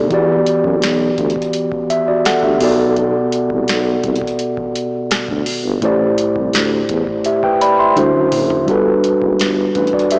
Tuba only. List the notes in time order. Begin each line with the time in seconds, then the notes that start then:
Already playing: D2
0.11 E2
0.65 F#2
0.82 B1
1.18 D2
2.43 D2
2.61 B1
3.50 C2
3.68 B1
4.04 C2
5.11 D2
5.29 D2
5.65 G1
5.82 A1
6.36 C2
6.54 D2
6.90 E2
7.97 D2
8.15 F#2
8.33 F#1
8.68 G1
9.22 F#1
9.40 G1
9.76 A1